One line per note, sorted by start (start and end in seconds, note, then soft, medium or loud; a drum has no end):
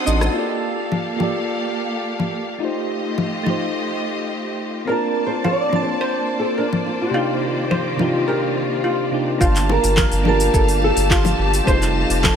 0.00 0.05 C4 medium
0.00 0.06 D4 medium
0.00 0.07 D#4 medium
0.00 0.07 F#4 medium
0.00 0.08 A4 loud
0.00 0.36 A4 medium
0.00 0.33 C5 medium
0.00 0.34 F#5 medium
0.00 0.36 A5 medium
0.00 0.34 C6 medium
0.00 0.34 D#6 medium
0.05 0.29 A1 medium
0.05 0.31 C4 medium
0.05 0.31 D4 medium
0.05 0.32 D#4 medium
0.05 0.32 F#4 medium
0.05 0.32 A4 medium
0.05 0.34 D#5 medium
0.05 shaker medium
0.21 cross-stick medium
0.21 high bongo soft
0.21 shaker soft
0.32 1.15 A#3 medium
0.32 2.59 A#3 medium
0.32 1.16 F4 medium
0.32 1.17 G4 medium
0.32 2.59 G4 medium
0.32 2.59 A4 medium
0.32 2.59 F5 medium
0.37 1.18 A4 medium
0.37 1.18 D5 medium
0.92 low conga medium
1.16 2.56 A#3 medium
1.16 2.57 F4 medium
1.16 2.58 G4 medium
1.16 low conga medium
1.21 2.59 A4 medium
1.21 2.60 D5 medium
2.20 low conga medium
2.58 3.42 A3 medium
2.58 4.86 A3 medium
2.58 3.42 D#4 medium
2.58 3.43 F4 medium
2.58 4.86 F4 medium
2.58 4.86 G4 medium
2.58 4.86 D#5 medium
2.63 3.44 G4 medium
2.63 3.45 C5 medium
3.18 low conga medium
3.43 4.83 A3 medium
3.43 4.84 D#4 medium
3.43 4.85 F4 medium
3.43 low conga medium
3.49 4.86 G4 medium
3.49 4.87 C5 medium
4.85 5.68 A#3 medium
4.85 9.37 A#3 medium
4.85 5.69 C4 medium
4.85 5.70 D4 medium
4.85 5.15 A#4 medium
4.85 5.24 A#4 medium
4.85 9.37 C5 medium
4.85 9.37 D5 medium
4.85 7.12 A5 medium
4.90 5.70 F4 medium
4.90 5.71 A5 medium
5.26 5.45 C5 medium
5.44 5.70 F4 medium
5.44 5.82 D5 medium
5.44 low conga medium
5.69 7.09 A#3 medium
5.69 7.10 C4 medium
5.69 7.11 D4 medium
5.69 low conga medium
5.74 7.12 F4 medium
5.74 7.12 A5 medium
5.83 6.39 C5 medium
6.01 6.27 C5 medium
6.39 6.59 A4 medium
6.58 6.66 D4 medium
6.58 6.85 A#4 medium
6.73 low conga medium
6.87 6.92 F4 medium
7.02 7.51 G4 medium
7.10 7.94 C3 medium
7.10 9.38 D#3 medium
7.10 7.95 A#3 medium
7.10 7.95 D4 medium
7.10 9.38 F4 medium
7.10 7.40 F4 medium
7.15 7.96 D#4 medium
7.15 7.97 F4 medium
7.15 7.97 G4 medium
7.51 7.67 F4 medium
7.71 7.96 C5 medium
7.71 low conga medium
7.96 9.08 C3 medium
7.96 9.09 A#3 medium
7.96 9.09 D4 medium
7.96 9.10 D#4 medium
7.96 low conga medium
8.00 8.29 F4 medium
8.00 9.11 F4 medium
8.00 9.11 G4 medium
8.28 9.09 G4 medium
8.28 8.55 A#4 medium
8.84 9.10 F4 medium
9.11 9.37 C3 medium
9.11 9.37 A#3 medium
9.11 9.37 D4 medium
9.11 9.38 D#4 medium
9.11 9.38 F4 medium
9.11 9.38 G4 medium
9.38 9.78 G1 loud
9.38 10.21 A#3 medium
9.38 11.65 A#3 medium
9.38 10.22 D4 medium
9.38 9.66 F4 loud
9.38 10.23 F4 medium
9.38 12.36 G4 medium
9.38 12.36 A4 medium
9.38 11.65 F5 medium
9.38 12.36 A5 medium
9.38 kick loud
9.38 shaker medium
9.43 10.24 G4 medium
9.43 10.25 A5 medium
9.56 clap soft
9.56 open hi-hat soft
9.56 shaker soft
9.69 10.27 A#4 medium
9.69 high bongo medium
9.84 10.05 G1 loud
9.84 open hi-hat medium
9.84 shaker medium
9.97 10.23 A#4 loud
9.97 kick loud
9.97 clap loud
9.97 low conga medium
9.97 shaker medium
10.12 10.49 G1 loud
10.12 open hi-hat soft
10.12 shaker soft
10.22 11.62 A#3 medium
10.22 11.63 D4 medium
10.22 11.64 F4 medium
10.22 low conga medium
10.27 11.65 G4 medium
10.27 10.84 A#4 medium
10.27 11.65 A5 loud
10.40 open hi-hat medium
10.40 shaker medium
10.54 10.91 G1 medium
10.54 10.81 A4 medium
10.54 kick loud
10.54 shaker medium
10.69 open hi-hat soft
10.69 shaker soft
10.82 11.64 A4 loud
10.82 high bongo soft
10.97 11.34 G1 medium
10.97 open hi-hat medium
10.97 shaker medium
11.10 11.36 F4 loud
11.10 kick loud
11.10 clap loud
11.10 shaker medium
11.25 open hi-hat soft
11.25 high bongo medium
11.25 low conga medium
11.25 shaker soft
11.39 11.61 G1 medium
11.54 open hi-hat medium
11.54 shaker medium
11.64 12.04 F1 loud
11.64 12.36 G3 medium
11.64 12.36 C4 medium
11.64 12.36 D#4 medium
11.64 11.93 C5 loud
11.64 12.36 D#5 medium
11.64 12.36 F5 medium
11.64 kick loud
11.64 shaker medium
11.69 12.36 F4 medium
11.69 12.36 A4 medium
11.69 12.36 C5 loud
11.82 clap soft
11.82 open hi-hat soft
11.82 shaker soft
12.10 12.31 F1 medium
12.10 open hi-hat medium
12.10 shaker medium
12.24 12.36 A4 medium
12.24 kick loud
12.24 clap loud
12.24 low conga medium
12.24 shaker medium